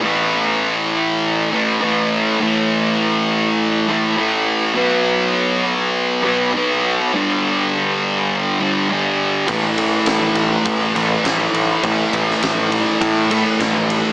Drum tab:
RD |----------------|----------------|----------------|----------------|
SD |----------------|----------------|----------------|----------------|
BD |----------------|----------------|----------------|----------------|

RD |x-x-x-x-x-x-x-x-|x-x-x-x-x-x-x-x-|
SD |----o-------o---|---oo-------o---|
BD |o-------o-------|o-o-----o-------|